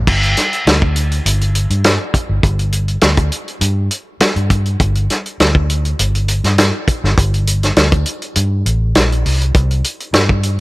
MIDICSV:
0, 0, Header, 1, 4, 480
1, 0, Start_track
1, 0, Tempo, 592300
1, 55, Time_signature, 4, 2, 24, 8
1, 8591, End_track
2, 0, Start_track
2, 0, Title_t, "Fingered electric bass"
2, 0, Program_c, 0, 33
2, 62, Note_on_c, 0, 31, 88
2, 272, Note_off_c, 0, 31, 0
2, 541, Note_on_c, 0, 38, 97
2, 965, Note_off_c, 0, 38, 0
2, 1018, Note_on_c, 0, 31, 92
2, 1342, Note_off_c, 0, 31, 0
2, 1380, Note_on_c, 0, 43, 77
2, 1594, Note_off_c, 0, 43, 0
2, 1859, Note_on_c, 0, 31, 74
2, 1961, Note_off_c, 0, 31, 0
2, 1971, Note_on_c, 0, 31, 102
2, 2399, Note_off_c, 0, 31, 0
2, 2449, Note_on_c, 0, 38, 79
2, 2665, Note_off_c, 0, 38, 0
2, 2926, Note_on_c, 0, 43, 90
2, 3143, Note_off_c, 0, 43, 0
2, 3533, Note_on_c, 0, 43, 80
2, 3851, Note_off_c, 0, 43, 0
2, 3893, Note_on_c, 0, 31, 89
2, 4107, Note_off_c, 0, 31, 0
2, 4377, Note_on_c, 0, 38, 89
2, 4802, Note_off_c, 0, 38, 0
2, 4858, Note_on_c, 0, 31, 90
2, 5181, Note_off_c, 0, 31, 0
2, 5218, Note_on_c, 0, 43, 75
2, 5432, Note_off_c, 0, 43, 0
2, 5704, Note_on_c, 0, 31, 87
2, 5803, Note_off_c, 0, 31, 0
2, 5818, Note_on_c, 0, 31, 106
2, 6243, Note_off_c, 0, 31, 0
2, 6296, Note_on_c, 0, 38, 80
2, 6508, Note_off_c, 0, 38, 0
2, 6777, Note_on_c, 0, 43, 86
2, 6989, Note_off_c, 0, 43, 0
2, 7015, Note_on_c, 0, 33, 77
2, 7230, Note_off_c, 0, 33, 0
2, 7262, Note_on_c, 0, 34, 83
2, 7474, Note_off_c, 0, 34, 0
2, 7503, Note_on_c, 0, 36, 88
2, 7715, Note_off_c, 0, 36, 0
2, 7738, Note_on_c, 0, 36, 94
2, 7950, Note_off_c, 0, 36, 0
2, 8211, Note_on_c, 0, 43, 92
2, 8591, Note_off_c, 0, 43, 0
2, 8591, End_track
3, 0, Start_track
3, 0, Title_t, "Muted fingered electric bass strokes"
3, 3404, Note_on_c, 9, 29, 32
3, 3485, Note_off_c, 9, 29, 0
3, 8591, End_track
4, 0, Start_track
4, 0, Title_t, "Drums"
4, 59, Note_on_c, 9, 36, 91
4, 62, Note_on_c, 9, 49, 87
4, 140, Note_off_c, 9, 36, 0
4, 143, Note_off_c, 9, 49, 0
4, 187, Note_on_c, 9, 42, 35
4, 268, Note_off_c, 9, 42, 0
4, 298, Note_on_c, 9, 42, 64
4, 303, Note_on_c, 9, 38, 35
4, 379, Note_off_c, 9, 42, 0
4, 384, Note_off_c, 9, 38, 0
4, 427, Note_on_c, 9, 42, 39
4, 508, Note_off_c, 9, 42, 0
4, 542, Note_on_c, 9, 42, 79
4, 547, Note_on_c, 9, 38, 96
4, 623, Note_off_c, 9, 42, 0
4, 628, Note_off_c, 9, 38, 0
4, 665, Note_on_c, 9, 36, 83
4, 746, Note_off_c, 9, 36, 0
4, 775, Note_on_c, 9, 42, 61
4, 856, Note_off_c, 9, 42, 0
4, 904, Note_on_c, 9, 42, 38
4, 985, Note_off_c, 9, 42, 0
4, 1020, Note_on_c, 9, 42, 97
4, 1101, Note_off_c, 9, 42, 0
4, 1145, Note_on_c, 9, 42, 41
4, 1226, Note_off_c, 9, 42, 0
4, 1255, Note_on_c, 9, 42, 62
4, 1336, Note_off_c, 9, 42, 0
4, 1380, Note_on_c, 9, 42, 40
4, 1461, Note_off_c, 9, 42, 0
4, 1492, Note_on_c, 9, 42, 93
4, 1497, Note_on_c, 9, 38, 120
4, 1573, Note_off_c, 9, 42, 0
4, 1578, Note_off_c, 9, 38, 0
4, 1734, Note_on_c, 9, 36, 76
4, 1736, Note_on_c, 9, 42, 65
4, 1815, Note_off_c, 9, 36, 0
4, 1817, Note_off_c, 9, 42, 0
4, 1971, Note_on_c, 9, 42, 79
4, 1972, Note_on_c, 9, 36, 94
4, 2052, Note_off_c, 9, 42, 0
4, 2053, Note_off_c, 9, 36, 0
4, 2099, Note_on_c, 9, 42, 41
4, 2180, Note_off_c, 9, 42, 0
4, 2208, Note_on_c, 9, 42, 67
4, 2289, Note_off_c, 9, 42, 0
4, 2334, Note_on_c, 9, 42, 36
4, 2415, Note_off_c, 9, 42, 0
4, 2441, Note_on_c, 9, 42, 79
4, 2446, Note_on_c, 9, 38, 94
4, 2523, Note_off_c, 9, 42, 0
4, 2527, Note_off_c, 9, 38, 0
4, 2569, Note_on_c, 9, 42, 43
4, 2573, Note_on_c, 9, 36, 81
4, 2650, Note_off_c, 9, 42, 0
4, 2654, Note_off_c, 9, 36, 0
4, 2688, Note_on_c, 9, 42, 63
4, 2769, Note_off_c, 9, 42, 0
4, 2818, Note_on_c, 9, 42, 33
4, 2899, Note_off_c, 9, 42, 0
4, 2925, Note_on_c, 9, 42, 85
4, 3006, Note_off_c, 9, 42, 0
4, 3166, Note_on_c, 9, 42, 56
4, 3247, Note_off_c, 9, 42, 0
4, 3406, Note_on_c, 9, 42, 92
4, 3411, Note_on_c, 9, 38, 119
4, 3487, Note_off_c, 9, 42, 0
4, 3492, Note_off_c, 9, 38, 0
4, 3534, Note_on_c, 9, 42, 37
4, 3615, Note_off_c, 9, 42, 0
4, 3647, Note_on_c, 9, 42, 65
4, 3648, Note_on_c, 9, 36, 79
4, 3728, Note_off_c, 9, 42, 0
4, 3729, Note_off_c, 9, 36, 0
4, 3772, Note_on_c, 9, 42, 35
4, 3853, Note_off_c, 9, 42, 0
4, 3887, Note_on_c, 9, 42, 78
4, 3889, Note_on_c, 9, 36, 87
4, 3968, Note_off_c, 9, 42, 0
4, 3970, Note_off_c, 9, 36, 0
4, 4014, Note_on_c, 9, 42, 39
4, 4095, Note_off_c, 9, 42, 0
4, 4132, Note_on_c, 9, 42, 62
4, 4137, Note_on_c, 9, 38, 35
4, 4213, Note_off_c, 9, 42, 0
4, 4218, Note_off_c, 9, 38, 0
4, 4260, Note_on_c, 9, 42, 38
4, 4341, Note_off_c, 9, 42, 0
4, 4375, Note_on_c, 9, 42, 77
4, 4380, Note_on_c, 9, 38, 101
4, 4456, Note_off_c, 9, 42, 0
4, 4461, Note_off_c, 9, 38, 0
4, 4497, Note_on_c, 9, 36, 87
4, 4578, Note_off_c, 9, 36, 0
4, 4616, Note_on_c, 9, 42, 61
4, 4697, Note_off_c, 9, 42, 0
4, 4740, Note_on_c, 9, 42, 37
4, 4821, Note_off_c, 9, 42, 0
4, 4854, Note_on_c, 9, 42, 86
4, 4935, Note_off_c, 9, 42, 0
4, 4982, Note_on_c, 9, 42, 38
4, 5063, Note_off_c, 9, 42, 0
4, 5090, Note_on_c, 9, 42, 71
4, 5171, Note_off_c, 9, 42, 0
4, 5220, Note_on_c, 9, 42, 41
4, 5225, Note_on_c, 9, 38, 34
4, 5301, Note_off_c, 9, 42, 0
4, 5306, Note_off_c, 9, 38, 0
4, 5332, Note_on_c, 9, 42, 91
4, 5337, Note_on_c, 9, 38, 118
4, 5413, Note_off_c, 9, 42, 0
4, 5418, Note_off_c, 9, 38, 0
4, 5573, Note_on_c, 9, 36, 87
4, 5576, Note_on_c, 9, 42, 66
4, 5654, Note_off_c, 9, 36, 0
4, 5657, Note_off_c, 9, 42, 0
4, 5709, Note_on_c, 9, 38, 36
4, 5790, Note_off_c, 9, 38, 0
4, 5816, Note_on_c, 9, 36, 108
4, 5821, Note_on_c, 9, 42, 75
4, 5897, Note_off_c, 9, 36, 0
4, 5902, Note_off_c, 9, 42, 0
4, 5946, Note_on_c, 9, 42, 43
4, 6028, Note_off_c, 9, 42, 0
4, 6055, Note_on_c, 9, 42, 67
4, 6136, Note_off_c, 9, 42, 0
4, 6183, Note_on_c, 9, 42, 44
4, 6188, Note_on_c, 9, 38, 35
4, 6264, Note_off_c, 9, 42, 0
4, 6269, Note_off_c, 9, 38, 0
4, 6292, Note_on_c, 9, 42, 81
4, 6297, Note_on_c, 9, 38, 102
4, 6373, Note_off_c, 9, 42, 0
4, 6378, Note_off_c, 9, 38, 0
4, 6418, Note_on_c, 9, 42, 38
4, 6420, Note_on_c, 9, 36, 92
4, 6499, Note_off_c, 9, 42, 0
4, 6501, Note_off_c, 9, 36, 0
4, 6528, Note_on_c, 9, 42, 65
4, 6609, Note_off_c, 9, 42, 0
4, 6660, Note_on_c, 9, 42, 36
4, 6741, Note_off_c, 9, 42, 0
4, 6771, Note_on_c, 9, 42, 91
4, 6852, Note_off_c, 9, 42, 0
4, 7018, Note_on_c, 9, 42, 56
4, 7099, Note_off_c, 9, 42, 0
4, 7254, Note_on_c, 9, 42, 86
4, 7259, Note_on_c, 9, 38, 122
4, 7335, Note_off_c, 9, 42, 0
4, 7340, Note_off_c, 9, 38, 0
4, 7391, Note_on_c, 9, 42, 36
4, 7472, Note_off_c, 9, 42, 0
4, 7501, Note_on_c, 9, 46, 78
4, 7582, Note_off_c, 9, 46, 0
4, 7629, Note_on_c, 9, 42, 36
4, 7710, Note_off_c, 9, 42, 0
4, 7736, Note_on_c, 9, 42, 73
4, 7737, Note_on_c, 9, 36, 98
4, 7817, Note_off_c, 9, 42, 0
4, 7818, Note_off_c, 9, 36, 0
4, 7866, Note_on_c, 9, 42, 38
4, 7947, Note_off_c, 9, 42, 0
4, 7977, Note_on_c, 9, 42, 68
4, 8058, Note_off_c, 9, 42, 0
4, 8106, Note_on_c, 9, 42, 38
4, 8187, Note_off_c, 9, 42, 0
4, 8213, Note_on_c, 9, 42, 80
4, 8218, Note_on_c, 9, 38, 106
4, 8294, Note_off_c, 9, 42, 0
4, 8299, Note_off_c, 9, 38, 0
4, 8342, Note_on_c, 9, 36, 84
4, 8423, Note_off_c, 9, 36, 0
4, 8454, Note_on_c, 9, 42, 56
4, 8535, Note_off_c, 9, 42, 0
4, 8591, End_track
0, 0, End_of_file